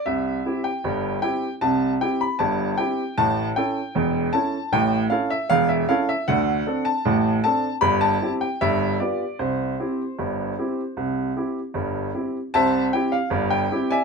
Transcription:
\new Staff \with { instrumentName = "Upright piano" } { \time 2/4 \key c \major \tempo 4 = 77 << { e''8. g''8. g''8 | a''8 g''16 b''16 a''8 g''8 | a''8 g''4 a''8 | g''8 f''16 e''16 f''16 e''16 f''16 e''16 |
fis''8. a''8. a''8 | b''16 a''8 g''16 e''8 d''8 | c''2~ | c''4. r8 |
<c'' e'' a''>8 g''16 f''8 g''8 <d'' e'' aes''>16 | } \\ { <c, c>8 <c' e' g'>8 <g,, g,>8 <c' e' g'>8 | <c, c>8 <c' e' g'>8 <g,, g,>8 <c' e' g'>8 | <a,, a,>8 <cis' e' a'>8 <e,, e,>8 <cis' e' a'>8 | <a,, a,>8 <cis' e' a'>8 <e,, e,>8 <cis' e' a'>8 |
<d, d>8 <c' d' a'>8 <a,, a,>8 <c' d' a'>8 | <g,, g,>8 <c' e' g'>8 <g,, g,>8 <b f' g'>8 | <c, c>8 <c' e' g'>8 <g,, g,>8 <c' e' g'>8 | <c, c>8 <c' e' g'>8 <g,, g,>8 <c' e' g'>8 |
<c, c>8 <c' e' g'>8 <g,, g,>8 <c' e' g'>8 | } >> }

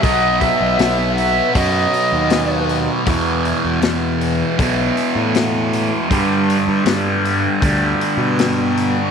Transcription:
<<
  \new Staff \with { instrumentName = "Flute" } { \time 4/4 \key e \minor \tempo 4 = 79 dis''8 e''4 e''8 dis''4. r8 | r1 | r1 | }
  \new Staff \with { instrumentName = "Distorted electric guitar" } { \clef bass \time 4/4 \key e \minor <b, fis b>2 <b, fis b>2 | <e, b, e>2 <e, b, e>2 | <g, d g>2 <g, d g>2 | }
  \new Staff \with { instrumentName = "Picked electric bass" } { \clef bass \time 4/4 \key e \minor b,,8. b,,16 b,,4 fis,8 r16 dis,4~ dis,16 | e,8. e,16 e,4 b,,8 r16 a,4~ a,16 | g,8. g,16 g,4 d,8 r16 b,4~ b,16 | }
  \new DrumStaff \with { instrumentName = "Drums" } \drummode { \time 4/4 <hho bd>8 <hho bd>8 <hho sn>8 hho8 <hho bd>8 hho8 <hho sn>8 hho8 | <hho bd>8 hho8 <hho sn>8 hho8 <hho bd>8 hho8 <hho sn>8 hho8 | <hho bd>8 hho8 <hho sn>8 hho8 <hho bd>8 hho8 <hho sn>8 hho8 | }
>>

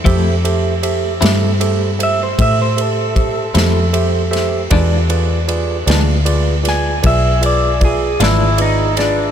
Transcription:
<<
  \new Staff \with { instrumentName = "Clean electric guitar" } { \time 12/8 \key f \lydian \tempo 4. = 52 a'8 r2 e''16 c''16 e''16 c''16 a'2~ a'8 | r2 r8 gis''8 e''8 d''8 gis'8 e'8 dis'8 d'8 | }
  \new Staff \with { instrumentName = "Tine electric piano" } { \time 12/8 \key f \lydian <g' a' c'' e''>8 <g' a' c'' e''>8 <g' a' c'' e''>8 <g' a' c'' e''>8 <g' a' c'' e''>8 <g' a' c'' e''>8 <g' a' c'' e''>8 <g' a' c'' e''>8 <g' a' c'' e''>8 <g' a' c'' e''>8 <g' a' c'' e''>8 <g' a' c'' e''>8 | <f' gis' b' d''>8 <f' gis' b' d''>8 <f' gis' b' d''>8 <f' gis' b' d''>8 <f' gis' b' d''>8 <f' gis' b' d''>8 <f' gis' b' d''>8 <f' gis' b' d''>8 <f' gis' b' d''>8 <f' gis' b' d''>8 <f' gis' b' d''>8 <f' gis' b' d''>8 | }
  \new Staff \with { instrumentName = "Clean electric guitar" } { \time 12/8 \key f \lydian <f a c' e'>8 r4 <f a c' e'>8 r2 r8 <f a c' e'>8 r4 | <e gis d' f'>8 r4 <e gis d' f'>8 r2 r8 <e gis d' f'>8 r4 | }
  \new Staff \with { instrumentName = "Fingered electric bass" } { \clef bass \time 12/8 \key f \lydian f,4. g,4. a,4. f,4. | e,4. d,4. b,,4. gis,,4. | }
  \new DrumStaff \with { instrumentName = "Drums" } \drummode { \time 12/8 <bd cymr>8 cymr8 cymr8 <cymr sn>8 cymr8 cymr8 <bd cymr>8 cymr8 <bd cymr>8 <cymr sn>8 cymr8 <cymr sn>8 | <bd cymr>8 cymr8 cymr8 <cymr sn>8 cymr8 <cymr sn>8 <bd cymr>8 cymr8 <bd cymr>8 <cymr sn>8 cymr8 <cymr sn>8 | }
>>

